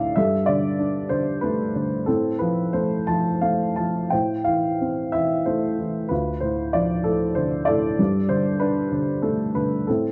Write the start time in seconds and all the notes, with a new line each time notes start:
Already playing: D2 A2 D3 F3 F4 A4 B4 D5 E5 F5
0.16 G2 A4 E5
0.46 D3 D5
0.79 D4
1.09 D3 C5
1.41 A3 B4
1.75 D3
2.06 A2 C4 A4
2.39 F3 B4
2.73 A3 C5
3.07 F3 A5
3.41 A3 F5
3.76 F3 A5
4.10 A2 C5 G5
4.44 E3 F5
4.81 C4
5.12 E3 E5
5.45 A3 C5
5.79 E3
6.09 D2 F4 B4
6.40 A2 C5
6.73 F3 D5
7.04 A2 A4
7.35 D3 C5
7.65 A2 A4 D5
7.99 G2
8.29 D3 C5
8.60 D4 B4
8.92 D3
9.22 A3 A4
9.55 D3 B4
9.87 A2 C4 A4